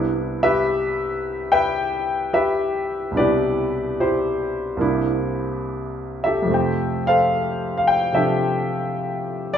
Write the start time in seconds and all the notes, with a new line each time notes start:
Already playing: C2 C3 B3 D4 E4
0.43 G4 B4 E5
1.52 B4 E5 G5
2.33 G4 B4 E5
3.11 C2 B2 C3 D4
3.16 E4 G4 B4 D5
4.00 E4 G4 C5
4.77 C2 C3 A#3 D4
4.81 E4
6.24 G4 A4 E5
6.42 F2 C3
6.48 A3 C4
6.54 G5
7.07 A4 C5 F5
7.77 F5
7.87 G5
8.13 C3 F3 D4 F4 G4 A4 E5
9.54 D5